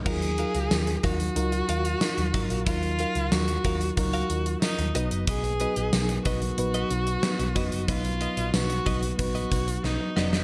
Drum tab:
CC |x---------------|----------------|----------------|----------------|
HH |-xxx-xxxxxxx-xxx|xxxx-xxxxxxx-xxx|xxxx-xxxxxxx-xxx|xxxx-xxxxxxx----|
TB |----x-------x---|----x-------x---|----x-------x---|----x-----------|
SD |----o-------o---|----o-------o---|----o-------o---|----o-------o-oo|
BD |o-----o-------o-|o-----o-o-------|o-----o-------o-|o-----o-o-o-----|